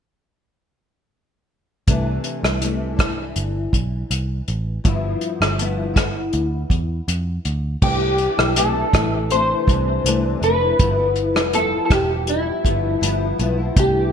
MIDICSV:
0, 0, Header, 1, 5, 480
1, 0, Start_track
1, 0, Key_signature, 0, "major"
1, 0, Tempo, 743494
1, 1212, Time_signature, 4, 2, 24, 8
1, 9117, End_track
2, 0, Start_track
2, 0, Title_t, "Clean electric guitar"
2, 0, Program_c, 0, 27
2, 5057, Note_on_c, 0, 67, 89
2, 5508, Note_off_c, 0, 67, 0
2, 5536, Note_on_c, 0, 69, 87
2, 6012, Note_off_c, 0, 69, 0
2, 6015, Note_on_c, 0, 72, 100
2, 6736, Note_off_c, 0, 72, 0
2, 6739, Note_on_c, 0, 71, 92
2, 7428, Note_off_c, 0, 71, 0
2, 7455, Note_on_c, 0, 69, 83
2, 7633, Note_off_c, 0, 69, 0
2, 7654, Note_on_c, 0, 69, 61
2, 7694, Note_off_c, 0, 69, 0
2, 7695, Note_on_c, 0, 67, 82
2, 7935, Note_off_c, 0, 67, 0
2, 7937, Note_on_c, 0, 64, 74
2, 8627, Note_off_c, 0, 64, 0
2, 8906, Note_on_c, 0, 67, 94
2, 9117, Note_off_c, 0, 67, 0
2, 9117, End_track
3, 0, Start_track
3, 0, Title_t, "Nylon-string guitar"
3, 0, Program_c, 1, 24
3, 1208, Note_on_c, 1, 48, 59
3, 1214, Note_on_c, 1, 52, 60
3, 1221, Note_on_c, 1, 57, 67
3, 1226, Note_on_c, 1, 62, 73
3, 1674, Note_off_c, 1, 48, 0
3, 1682, Note_on_c, 1, 48, 58
3, 1690, Note_off_c, 1, 52, 0
3, 1693, Note_on_c, 1, 52, 49
3, 1698, Note_off_c, 1, 57, 0
3, 1700, Note_on_c, 1, 57, 59
3, 1701, Note_off_c, 1, 62, 0
3, 1707, Note_on_c, 1, 62, 66
3, 1906, Note_off_c, 1, 62, 0
3, 1914, Note_on_c, 1, 62, 46
3, 1927, Note_off_c, 1, 48, 0
3, 1932, Note_off_c, 1, 52, 0
3, 1936, Note_off_c, 1, 57, 0
3, 1945, Note_on_c, 1, 57, 39
3, 1968, Note_on_c, 1, 52, 41
3, 3124, Note_on_c, 1, 43, 66
3, 3128, Note_off_c, 1, 52, 0
3, 3131, Note_on_c, 1, 53, 67
3, 3133, Note_off_c, 1, 57, 0
3, 3135, Note_on_c, 1, 59, 72
3, 3139, Note_off_c, 1, 62, 0
3, 3141, Note_on_c, 1, 64, 80
3, 3595, Note_off_c, 1, 43, 0
3, 3603, Note_on_c, 1, 43, 64
3, 3606, Note_off_c, 1, 53, 0
3, 3613, Note_off_c, 1, 59, 0
3, 3614, Note_on_c, 1, 53, 66
3, 3620, Note_on_c, 1, 59, 65
3, 3626, Note_off_c, 1, 64, 0
3, 3629, Note_on_c, 1, 64, 65
3, 3824, Note_off_c, 1, 64, 0
3, 3832, Note_on_c, 1, 64, 51
3, 3847, Note_off_c, 1, 43, 0
3, 3852, Note_off_c, 1, 53, 0
3, 3856, Note_off_c, 1, 59, 0
3, 3864, Note_on_c, 1, 59, 48
3, 5046, Note_on_c, 1, 48, 62
3, 5052, Note_on_c, 1, 52, 70
3, 5055, Note_off_c, 1, 59, 0
3, 5058, Note_on_c, 1, 57, 63
3, 5061, Note_off_c, 1, 64, 0
3, 5064, Note_on_c, 1, 62, 67
3, 5157, Note_off_c, 1, 62, 0
3, 5165, Note_on_c, 1, 62, 44
3, 5168, Note_off_c, 1, 48, 0
3, 5171, Note_off_c, 1, 52, 0
3, 5171, Note_off_c, 1, 57, 0
3, 5179, Note_on_c, 1, 57, 40
3, 5191, Note_on_c, 1, 52, 34
3, 5396, Note_off_c, 1, 62, 0
3, 5404, Note_on_c, 1, 62, 44
3, 5411, Note_off_c, 1, 57, 0
3, 5419, Note_on_c, 1, 57, 45
3, 5421, Note_off_c, 1, 52, 0
3, 5430, Note_on_c, 1, 52, 34
3, 5524, Note_off_c, 1, 52, 0
3, 5526, Note_on_c, 1, 48, 70
3, 5527, Note_off_c, 1, 62, 0
3, 5531, Note_off_c, 1, 57, 0
3, 5531, Note_on_c, 1, 52, 74
3, 5539, Note_on_c, 1, 57, 70
3, 5544, Note_on_c, 1, 62, 74
3, 5635, Note_off_c, 1, 62, 0
3, 5643, Note_on_c, 1, 62, 49
3, 5647, Note_off_c, 1, 57, 0
3, 5648, Note_off_c, 1, 48, 0
3, 5651, Note_off_c, 1, 52, 0
3, 5655, Note_on_c, 1, 57, 46
3, 5667, Note_on_c, 1, 52, 44
3, 5761, Note_on_c, 1, 48, 49
3, 5762, Note_off_c, 1, 52, 0
3, 5766, Note_off_c, 1, 62, 0
3, 5770, Note_on_c, 1, 52, 55
3, 5772, Note_off_c, 1, 57, 0
3, 5779, Note_on_c, 1, 57, 60
3, 5786, Note_on_c, 1, 62, 53
3, 5991, Note_off_c, 1, 48, 0
3, 5999, Note_on_c, 1, 48, 50
3, 6002, Note_off_c, 1, 52, 0
3, 6009, Note_off_c, 1, 57, 0
3, 6010, Note_on_c, 1, 52, 49
3, 6017, Note_on_c, 1, 57, 49
3, 6018, Note_off_c, 1, 62, 0
3, 6025, Note_on_c, 1, 62, 51
3, 6233, Note_off_c, 1, 48, 0
3, 6241, Note_on_c, 1, 48, 53
3, 6243, Note_off_c, 1, 52, 0
3, 6251, Note_on_c, 1, 52, 53
3, 6253, Note_off_c, 1, 57, 0
3, 6257, Note_off_c, 1, 62, 0
3, 6260, Note_on_c, 1, 57, 54
3, 6266, Note_on_c, 1, 62, 57
3, 6477, Note_off_c, 1, 48, 0
3, 6483, Note_off_c, 1, 52, 0
3, 6485, Note_on_c, 1, 48, 77
3, 6490, Note_off_c, 1, 57, 0
3, 6491, Note_on_c, 1, 52, 69
3, 6495, Note_off_c, 1, 62, 0
3, 6498, Note_on_c, 1, 57, 78
3, 6503, Note_on_c, 1, 62, 87
3, 6717, Note_off_c, 1, 48, 0
3, 6725, Note_on_c, 1, 48, 59
3, 6727, Note_off_c, 1, 52, 0
3, 6733, Note_off_c, 1, 57, 0
3, 6734, Note_on_c, 1, 52, 53
3, 6736, Note_off_c, 1, 62, 0
3, 6743, Note_on_c, 1, 57, 59
3, 6750, Note_on_c, 1, 62, 53
3, 6836, Note_off_c, 1, 62, 0
3, 6843, Note_on_c, 1, 62, 50
3, 6847, Note_off_c, 1, 48, 0
3, 6851, Note_off_c, 1, 57, 0
3, 6852, Note_off_c, 1, 52, 0
3, 6859, Note_on_c, 1, 57, 44
3, 6871, Note_on_c, 1, 52, 43
3, 6966, Note_off_c, 1, 62, 0
3, 6968, Note_on_c, 1, 43, 68
3, 6973, Note_off_c, 1, 52, 0
3, 6974, Note_off_c, 1, 57, 0
3, 6975, Note_on_c, 1, 53, 63
3, 6981, Note_on_c, 1, 59, 71
3, 6985, Note_on_c, 1, 64, 69
3, 7077, Note_off_c, 1, 64, 0
3, 7084, Note_on_c, 1, 64, 38
3, 7089, Note_off_c, 1, 43, 0
3, 7090, Note_off_c, 1, 59, 0
3, 7092, Note_off_c, 1, 53, 0
3, 7098, Note_on_c, 1, 59, 41
3, 7110, Note_on_c, 1, 53, 36
3, 7314, Note_off_c, 1, 64, 0
3, 7321, Note_on_c, 1, 64, 47
3, 7329, Note_off_c, 1, 59, 0
3, 7336, Note_on_c, 1, 59, 43
3, 7339, Note_off_c, 1, 53, 0
3, 7348, Note_on_c, 1, 53, 34
3, 7442, Note_off_c, 1, 53, 0
3, 7443, Note_on_c, 1, 43, 69
3, 7445, Note_off_c, 1, 64, 0
3, 7448, Note_off_c, 1, 59, 0
3, 7450, Note_on_c, 1, 53, 73
3, 7456, Note_on_c, 1, 59, 83
3, 7462, Note_on_c, 1, 64, 80
3, 7551, Note_off_c, 1, 64, 0
3, 7559, Note_on_c, 1, 64, 48
3, 7563, Note_off_c, 1, 59, 0
3, 7566, Note_off_c, 1, 43, 0
3, 7569, Note_off_c, 1, 53, 0
3, 7571, Note_on_c, 1, 59, 42
3, 7584, Note_on_c, 1, 53, 39
3, 7678, Note_on_c, 1, 43, 51
3, 7682, Note_off_c, 1, 53, 0
3, 7684, Note_off_c, 1, 64, 0
3, 7688, Note_off_c, 1, 59, 0
3, 7689, Note_on_c, 1, 53, 54
3, 7696, Note_on_c, 1, 59, 56
3, 7706, Note_on_c, 1, 64, 59
3, 8153, Note_off_c, 1, 43, 0
3, 8161, Note_on_c, 1, 43, 55
3, 8162, Note_off_c, 1, 53, 0
3, 8170, Note_on_c, 1, 53, 57
3, 8172, Note_off_c, 1, 59, 0
3, 8179, Note_on_c, 1, 59, 60
3, 8183, Note_off_c, 1, 64, 0
3, 8186, Note_on_c, 1, 64, 61
3, 8392, Note_off_c, 1, 43, 0
3, 8399, Note_on_c, 1, 43, 74
3, 8400, Note_off_c, 1, 53, 0
3, 8406, Note_off_c, 1, 59, 0
3, 8408, Note_on_c, 1, 53, 83
3, 8410, Note_off_c, 1, 64, 0
3, 8413, Note_on_c, 1, 59, 80
3, 8418, Note_on_c, 1, 64, 80
3, 8632, Note_off_c, 1, 43, 0
3, 8640, Note_on_c, 1, 43, 60
3, 8641, Note_off_c, 1, 53, 0
3, 8649, Note_off_c, 1, 59, 0
3, 8649, Note_on_c, 1, 53, 59
3, 8653, Note_off_c, 1, 64, 0
3, 8657, Note_on_c, 1, 59, 71
3, 8666, Note_on_c, 1, 64, 71
3, 8753, Note_off_c, 1, 64, 0
3, 8761, Note_on_c, 1, 64, 45
3, 8764, Note_off_c, 1, 43, 0
3, 8769, Note_off_c, 1, 53, 0
3, 8769, Note_off_c, 1, 59, 0
3, 8776, Note_on_c, 1, 59, 47
3, 8788, Note_on_c, 1, 53, 35
3, 8885, Note_off_c, 1, 64, 0
3, 8885, Note_on_c, 1, 48, 67
3, 8889, Note_off_c, 1, 53, 0
3, 8891, Note_on_c, 1, 52, 57
3, 8892, Note_off_c, 1, 59, 0
3, 8897, Note_on_c, 1, 57, 66
3, 8903, Note_on_c, 1, 62, 70
3, 9117, Note_off_c, 1, 48, 0
3, 9117, Note_off_c, 1, 52, 0
3, 9117, Note_off_c, 1, 57, 0
3, 9117, Note_off_c, 1, 62, 0
3, 9117, End_track
4, 0, Start_track
4, 0, Title_t, "Picked electric bass"
4, 0, Program_c, 2, 34
4, 1212, Note_on_c, 2, 36, 78
4, 1404, Note_off_c, 2, 36, 0
4, 1571, Note_on_c, 2, 36, 71
4, 2146, Note_off_c, 2, 36, 0
4, 2171, Note_on_c, 2, 31, 86
4, 2363, Note_off_c, 2, 31, 0
4, 2407, Note_on_c, 2, 35, 80
4, 2601, Note_off_c, 2, 35, 0
4, 2651, Note_on_c, 2, 36, 74
4, 2843, Note_off_c, 2, 36, 0
4, 2894, Note_on_c, 2, 33, 76
4, 3085, Note_off_c, 2, 33, 0
4, 3132, Note_on_c, 2, 31, 90
4, 3324, Note_off_c, 2, 31, 0
4, 3491, Note_on_c, 2, 31, 77
4, 4065, Note_off_c, 2, 31, 0
4, 4090, Note_on_c, 2, 38, 67
4, 4283, Note_off_c, 2, 38, 0
4, 4324, Note_on_c, 2, 40, 79
4, 4519, Note_off_c, 2, 40, 0
4, 4571, Note_on_c, 2, 41, 79
4, 4763, Note_off_c, 2, 41, 0
4, 4812, Note_on_c, 2, 38, 69
4, 5004, Note_off_c, 2, 38, 0
4, 5048, Note_on_c, 2, 36, 90
4, 5337, Note_off_c, 2, 36, 0
4, 5414, Note_on_c, 2, 35, 70
4, 5700, Note_off_c, 2, 35, 0
4, 5767, Note_on_c, 2, 33, 84
4, 6152, Note_off_c, 2, 33, 0
4, 6246, Note_on_c, 2, 36, 92
4, 6439, Note_off_c, 2, 36, 0
4, 6485, Note_on_c, 2, 36, 72
4, 6679, Note_off_c, 2, 36, 0
4, 6725, Note_on_c, 2, 29, 78
4, 6919, Note_off_c, 2, 29, 0
4, 6969, Note_on_c, 2, 31, 103
4, 7321, Note_off_c, 2, 31, 0
4, 7321, Note_on_c, 2, 29, 84
4, 7612, Note_off_c, 2, 29, 0
4, 7684, Note_on_c, 2, 28, 79
4, 8069, Note_off_c, 2, 28, 0
4, 8165, Note_on_c, 2, 31, 91
4, 8359, Note_off_c, 2, 31, 0
4, 8406, Note_on_c, 2, 31, 86
4, 8599, Note_off_c, 2, 31, 0
4, 8648, Note_on_c, 2, 35, 79
4, 8840, Note_off_c, 2, 35, 0
4, 8886, Note_on_c, 2, 36, 109
4, 9117, Note_off_c, 2, 36, 0
4, 9117, End_track
5, 0, Start_track
5, 0, Title_t, "Drums"
5, 1211, Note_on_c, 9, 42, 61
5, 1212, Note_on_c, 9, 36, 102
5, 1275, Note_off_c, 9, 42, 0
5, 1276, Note_off_c, 9, 36, 0
5, 1446, Note_on_c, 9, 42, 51
5, 1510, Note_off_c, 9, 42, 0
5, 1578, Note_on_c, 9, 37, 71
5, 1643, Note_off_c, 9, 37, 0
5, 1690, Note_on_c, 9, 42, 66
5, 1754, Note_off_c, 9, 42, 0
5, 1929, Note_on_c, 9, 36, 91
5, 1931, Note_on_c, 9, 42, 47
5, 1937, Note_on_c, 9, 37, 83
5, 1994, Note_off_c, 9, 36, 0
5, 1996, Note_off_c, 9, 42, 0
5, 2002, Note_off_c, 9, 37, 0
5, 2168, Note_on_c, 9, 42, 63
5, 2232, Note_off_c, 9, 42, 0
5, 2408, Note_on_c, 9, 36, 75
5, 2414, Note_on_c, 9, 42, 51
5, 2473, Note_off_c, 9, 36, 0
5, 2479, Note_off_c, 9, 42, 0
5, 2652, Note_on_c, 9, 42, 81
5, 2717, Note_off_c, 9, 42, 0
5, 2891, Note_on_c, 9, 42, 41
5, 2955, Note_off_c, 9, 42, 0
5, 3130, Note_on_c, 9, 42, 62
5, 3131, Note_on_c, 9, 36, 107
5, 3195, Note_off_c, 9, 36, 0
5, 3195, Note_off_c, 9, 42, 0
5, 3365, Note_on_c, 9, 42, 48
5, 3429, Note_off_c, 9, 42, 0
5, 3498, Note_on_c, 9, 37, 78
5, 3562, Note_off_c, 9, 37, 0
5, 3610, Note_on_c, 9, 42, 70
5, 3675, Note_off_c, 9, 42, 0
5, 3848, Note_on_c, 9, 36, 90
5, 3850, Note_on_c, 9, 42, 48
5, 3857, Note_on_c, 9, 37, 79
5, 3913, Note_off_c, 9, 36, 0
5, 3915, Note_off_c, 9, 42, 0
5, 3922, Note_off_c, 9, 37, 0
5, 4085, Note_on_c, 9, 42, 54
5, 4150, Note_off_c, 9, 42, 0
5, 4326, Note_on_c, 9, 36, 76
5, 4332, Note_on_c, 9, 42, 42
5, 4391, Note_off_c, 9, 36, 0
5, 4397, Note_off_c, 9, 42, 0
5, 4573, Note_on_c, 9, 42, 75
5, 4638, Note_off_c, 9, 42, 0
5, 4810, Note_on_c, 9, 42, 45
5, 4874, Note_off_c, 9, 42, 0
5, 5049, Note_on_c, 9, 36, 117
5, 5049, Note_on_c, 9, 49, 81
5, 5114, Note_off_c, 9, 36, 0
5, 5114, Note_off_c, 9, 49, 0
5, 5282, Note_on_c, 9, 42, 54
5, 5347, Note_off_c, 9, 42, 0
5, 5416, Note_on_c, 9, 37, 83
5, 5480, Note_off_c, 9, 37, 0
5, 5528, Note_on_c, 9, 42, 75
5, 5593, Note_off_c, 9, 42, 0
5, 5768, Note_on_c, 9, 36, 92
5, 5769, Note_on_c, 9, 42, 51
5, 5776, Note_on_c, 9, 37, 83
5, 5832, Note_off_c, 9, 36, 0
5, 5834, Note_off_c, 9, 42, 0
5, 5840, Note_off_c, 9, 37, 0
5, 6007, Note_on_c, 9, 42, 63
5, 6072, Note_off_c, 9, 42, 0
5, 6247, Note_on_c, 9, 36, 84
5, 6255, Note_on_c, 9, 42, 49
5, 6312, Note_off_c, 9, 36, 0
5, 6320, Note_off_c, 9, 42, 0
5, 6494, Note_on_c, 9, 42, 82
5, 6559, Note_off_c, 9, 42, 0
5, 6731, Note_on_c, 9, 42, 42
5, 6796, Note_off_c, 9, 42, 0
5, 6968, Note_on_c, 9, 42, 65
5, 6970, Note_on_c, 9, 36, 108
5, 7033, Note_off_c, 9, 42, 0
5, 7034, Note_off_c, 9, 36, 0
5, 7203, Note_on_c, 9, 42, 47
5, 7267, Note_off_c, 9, 42, 0
5, 7335, Note_on_c, 9, 37, 81
5, 7399, Note_off_c, 9, 37, 0
5, 7446, Note_on_c, 9, 42, 76
5, 7511, Note_off_c, 9, 42, 0
5, 7686, Note_on_c, 9, 36, 93
5, 7687, Note_on_c, 9, 42, 49
5, 7693, Note_on_c, 9, 37, 91
5, 7750, Note_off_c, 9, 36, 0
5, 7751, Note_off_c, 9, 42, 0
5, 7758, Note_off_c, 9, 37, 0
5, 7922, Note_on_c, 9, 42, 57
5, 7987, Note_off_c, 9, 42, 0
5, 8164, Note_on_c, 9, 36, 87
5, 8170, Note_on_c, 9, 42, 51
5, 8229, Note_off_c, 9, 36, 0
5, 8235, Note_off_c, 9, 42, 0
5, 8411, Note_on_c, 9, 42, 88
5, 8476, Note_off_c, 9, 42, 0
5, 8647, Note_on_c, 9, 42, 51
5, 8712, Note_off_c, 9, 42, 0
5, 8886, Note_on_c, 9, 42, 68
5, 8887, Note_on_c, 9, 36, 107
5, 8951, Note_off_c, 9, 36, 0
5, 8951, Note_off_c, 9, 42, 0
5, 9117, End_track
0, 0, End_of_file